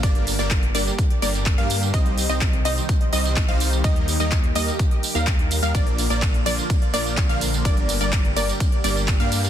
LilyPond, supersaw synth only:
\new Staff \with { instrumentName = "Supersaw synth" } { \time 4/4 \key g \minor \tempo 4 = 126 <g bes d' bes' d''>8. <g bes d' bes' d''>8 r16 <g bes d' bes' d''>16 r8. <g bes d' bes' d''>8. <g bes d' bes' f''>8. | <g c' ees' c'' ees''>8. <g c' ees' c'' ees''>8 r16 <g c' ees' c'' ees''>16 r8. <g c' ees' c'' ees''>8. <g c' ees' c'' f''>8. | <g bes ees' bes' ees''>8. <g bes ees' bes' ees''>8 r16 <g bes ees' bes' ees''>16 r4 <g bes ees' bes' f''>4 <g bes ees' bes' f''>16 | <f bes d' bes' d''>8. <f bes d' bes' d''>8 r16 <f bes d' bes' d''>16 r8. <f bes d' bes' d''>8. <f bes d' bes' f''>8. |
<g bes d' bes' d''>8. <g bes d' bes' d''>8 r16 <g bes d' bes' d''>16 r8. <g bes d' bes' d''>8. <g bes d' bes' f''>8. | }